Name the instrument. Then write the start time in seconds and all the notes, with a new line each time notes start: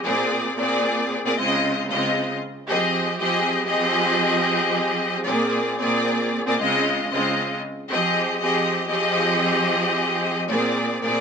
string section
0.05 A#2 A#3 C4 G#4 D5
0.59 A#2 A#3 C4 G#4 D5
1.25 A#2 A#3 C4 G#4 D5
1.38 C#3 G#3 C4 F4 D#5
1.91 C#3 G#3 C4 F4 D#5
2.70 F3 C4 G4 G#4 D#5
3.20 F3 C4 G4 G#4 D#5
3.67 F3 C4 G4 G#4 D#5
5.27 A#2 A#3 C4 G#4 D5
5.80 A#2 A#3 C4 G#4 D5
6.47 A#2 A#3 C4 G#4 D5
6.60 C#3 G#3 C4 F4 D#5
7.12 C#3 G#3 C4 F4 D#5
7.91 F3 C4 G4 G#4 D#5
8.42 F3 C4 G4 G#4 D#5
8.89 F3 C4 G4 G#4 D#5
10.49 A#2 A#3 C4 G#4 D5
11.02 A#2 A#3 C4 G#4 D5